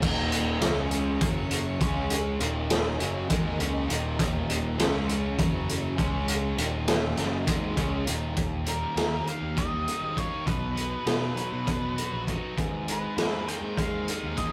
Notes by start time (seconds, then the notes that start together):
0.00 D#1 D#2 A#2 D#3 A#3 D#4 G4 A#4, kick, crash
0.32 closed hi-hat
0.60 C#2 C#3 G#3 C#4 G#4 C#5, snare, closed hi-hat
0.91 closed hi-hat
1.20 F#1 F#2 C#3 F#3 F#4, kick, closed hi-hat
1.51 closed hi-hat
1.79 C#2 C#3 G#3 C#4 G#4, kick, closed hi-hat
2.10 closed hi-hat
2.39 D#1 D#2 A#2 D#3 A#3 D#4 G4 A#4, closed hi-hat
2.70 snare, closed hi-hat
2.99 F#1 F#2 C#3 F#3, closed hi-hat
3.28 G#1 G#2 D#3 G#3, kick, closed hi-hat
3.58 C#2 C#3 G#3 C#4, closed hi-hat
3.88 D#1 D#2 A#2 D#3, closed hi-hat
4.18 D#1 D#2 A#2 D#3, kick, closed hi-hat
4.50 closed hi-hat
4.76 C#2 C#3 G#3 C#4 G#4 C#5, snare, closed hi-hat
5.09 closed hi-hat
5.36 F#1 F#2 C#3 F#3 C#4 F#4 C#5, kick, closed hi-hat
5.69 closed hi-hat
5.96 C#2 C#3 G#3 C#4 G#4 C#5, kick, closed hi-hat
6.28 closed hi-hat
6.56 D#1 D#2 A#2 D#3 A#3 D#4 G4 A#4, closed hi-hat
6.88 snare, closed hi-hat
7.16 F#1 F#2 C#3 F#3, snare, closed hi-hat
7.45 G#1 G#2 D#3 G#3, kick, closed hi-hat
7.76 C#2 C#3 G#3 C#4, kick, closed hi-hat
8.05 D#1 D#2 A#2 D#3, closed hi-hat
8.36 D#1 D#2, kick, closed hi-hat
8.64 G3, closed hi-hat
8.69 A#4
8.94 D#2 A#3, snare, closed hi-hat
9.25 D#3 F5, closed hi-hat
9.41 D#2
9.55 G3 D#5, kick, closed hi-hat
9.85 D#4, closed hi-hat
10.02 G#1
10.15 A#3 C#5, kick, closed hi-hat
10.45 B1 B2 B4, kick, closed hi-hat
10.75 B3, closed hi-hat
11.05 B2 D#4, snare, closed hi-hat
11.35 F#3, closed hi-hat
11.52 B2
11.66 B3, kick, closed hi-hat
11.96 F#4, closed hi-hat
12.12 A#1
12.27 D#4, kick, closed hi-hat
12.57 G#1 G#2, kick, closed hi-hat
12.87 G#3, closed hi-hat
12.91 B4
13.16 G#2 A#3, snare, closed hi-hat
13.47 D#3 G5, closed hi-hat
13.61 G#2
13.77 G#3 F5, kick, closed hi-hat
14.08 D#4, closed hi-hat
14.23 D#2
14.36 A#3 D#5, kick, closed hi-hat